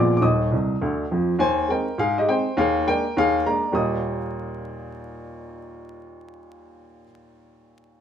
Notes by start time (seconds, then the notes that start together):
Already playing: A#1 A#2 F3 B3 G#4 D5 D6
0.17 D6
0.21 D#1 D#2 D#5 D#6
0.51 C2 C3
0.81 D2 D3
1.11 F2 F3
1.39 D#2 C5 G#5
1.68 G#3 C4 D#4 A#4 G5
1.98 G#2 G#4 F5
2.18 G4 D#5
2.28 G#3 C4 D#4 C5 G5
2.57 D#2 G#4 F5
2.87 G#3 A#3 D4 A#4 G5
3.17 D#2 G#4 F5
3.46 G#3 A#3 D4 D5 A#5
3.72 D#2 A#2 G3 A#3 D#4 G4 D#6